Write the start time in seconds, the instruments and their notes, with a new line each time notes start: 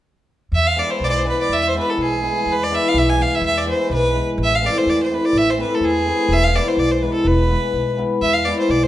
0.52 upright bass E2, fiddle E5
0.67 fiddle F5
0.76 hammered dulcimer E3 G#3 B3 E4, fiddle D5
0.91 fiddle C5
1.00 upright bass B1, fiddle D5
1.05 fiddle C5
1.10 fiddle D5
1.17 fiddle C5
1.25 hammered dulcimer E3 G#3 B3 E4, fiddle B4
1.41 fiddle D5
1.49 upright bass E2, fiddle E5
1.67 fiddle C5
1.75 hammered dulcimer E3 G#3 B3 E4
1.79 fiddle B4
1.90 fiddle A4
1.98 upright bass B1
2.03 fiddle G#4
2.22 hammered dulcimer E3 G#3 B3 E4
2.46 upright bass E2
2.52 fiddle B4
2.63 fiddle D5
2.70 hammered dulcimer E3 G#3 B3 E4
2.74 fiddle E5
2.88 fiddle F5
2.94 upright bass B1, fiddle E5
3.09 fiddle G#5
3.17 hammered dulcimer E3 G#3 B3 E4
3.22 fiddle F5
3.35 fiddle E5
3.41 upright bass E2
3.46 fiddle E5
3.58 fiddle D5
3.65 hammered dulcimer E3 G#3 B3 E4
3.70 fiddle C5
3.90 upright bass B1
3.94 fiddle B4
4.14 hammered dulcimer E3 G#3 B3 E4
4.38 upright bass A1
4.44 fiddle E5
4.55 fiddle F5
4.61 hammered dulcimer E3 A3 C4 E4
4.66 fiddle D5
4.78 fiddle C5
4.86 upright bass E2, fiddle D5
5.03 fiddle C5
5.10 hammered dulcimer E3 A3 C4 E4
5.14 fiddle B4
5.25 fiddle D5
5.33 upright bass A1
5.38 fiddle E5
5.50 fiddle C5
5.57 hammered dulcimer E3 A3 C4 E4
5.62 fiddle B4
5.75 fiddle A4
5.81 upright bass E2, fiddle G#4
6.07 hammered dulcimer E3 A3 C4 E4
6.29 upright bass E1
6.33 fiddle E5
6.44 fiddle F5
6.55 hammered dulcimer E3 G#3 B3 E4, fiddle D5
6.68 fiddle C5
6.77 upright bass B1, fiddle D5
6.91 fiddle C5
7.02 hammered dulcimer E3 G#3 B3 E4, fiddle B4
7.14 fiddle A4
7.25 upright bass E1, fiddle B4
7.49 hammered dulcimer E3 G#3 B3 E4
7.73 upright bass B1
7.97 hammered dulcimer E3 G#3 B3 E4
8.22 upright bass E2, fiddle E5
8.33 fiddle F5
8.45 hammered dulcimer E3 G#3 B3 E4, fiddle D5
8.59 fiddle C5
8.69 upright bass B1, fiddle D5
8.83 fiddle C5